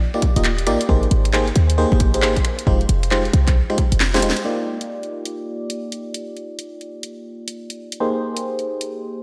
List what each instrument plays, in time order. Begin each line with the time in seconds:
0.14 fm electric piano A#3 D#4 F4 G4 D5, finger snap
0.22 kick, closed hi-hat
0.36 808-style bass D#1, fm electric piano A#3 D#4 F4 G4 D#5, closed hi-hat
0.44 clap, closed hi-hat
0.58 closed hi-hat
0.67 808-style bass A#1, fm electric piano A#3 D#4 F4 G4 D5, finger snap, closed hi-hat
0.81 closed hi-hat
0.89 808-style bass G#1, fm electric piano A#3 D#4 G4 G#4 C5, kick
1.03 closed hi-hat
1.11 808-style bass G#1, closed hi-hat
1.25 finger snap, closed hi-hat
1.33 fm electric piano A#3 D#4 G4 G#4 C5, clap
1.48 closed hi-hat
1.56 808-style bass D#2, closed hi-hat
1.70 closed hi-hat
1.78 fm electric piano A#3 D#4 G4 G#4 C5
1.92 808-style bass G#1, finger snap
2.00 kick, closed hi-hat
2.14 fm electric piano A#3 D#4 G4 G#4 C5, closed hi-hat
2.22 fm electric piano A#3 D#4 G4 G#4 C5, clap
2.36 kick, closed hi-hat
2.45 finger snap, closed hi-hat
2.59 closed hi-hat
2.67 808-style bass F1, fm electric piano G#3 D#4 F4 G4 C5, kick
2.81 closed hi-hat
2.89 808-style bass F1, closed hi-hat
3.03 finger snap, closed hi-hat
3.11 fm electric piano G#3 D#4 F4 G4 C5, clap
3.25 closed hi-hat
3.33 808-style bass C2, closed hi-hat
3.48 kick, clap, closed hi-hat
3.70 fm electric piano G#3 D#4 F4 G4 C5, finger snap
3.78 kick, closed hi-hat
3.92 808-style bass F1, closed hi-hat
4.00 snare, clap, closed hi-hat
4.14 fm electric piano G#3 D#4 F4 G4 C5, snare, closed hi-hat
4.22 808-style bass D#1, fm electric piano G#3 D#4 F4 G4, closed hi-hat
4.30 snare
4.37 closed hi-hat
4.45 fm electric piano A#3 D#4 F4 G4 D5
4.81 closed hi-hat
5.03 closed hi-hat
5.25 closed hi-hat
5.70 closed hi-hat
5.92 closed hi-hat
6.14 closed hi-hat
6.37 closed hi-hat
6.59 closed hi-hat
6.81 closed hi-hat
7.03 closed hi-hat
7.48 closed hi-hat
7.70 closed hi-hat
7.92 closed hi-hat
8.00 fm electric piano A#3 D#4 G4 G#4 C5
8.37 closed hi-hat
8.59 closed hi-hat
8.81 closed hi-hat